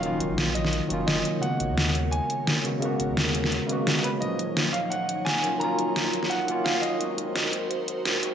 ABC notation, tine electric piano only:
X:1
M:4/4
L:1/8
Q:1/4=172
K:Ebm
V:1 name="Tine electric piano"
[E,G,B,DF]4- [E,G,B,DF] [E,G,B,DF]3 | [D,A,B,CG]6- [D,A,B,CG] [D,A,B,CG] | [D,A,B,CG]4- [D,A,B,CG] [D,A,B,CG]3 | [E,F,G,B,D]6- [E,F,G,B,D] [E,G,B,DF] |
[E,G,B,DF]4- [E,G,B,DF] [E,G,B,DF]3 | [E,G,A,=CG]6- [E,G,A,CG] [E,G,A,CG] |]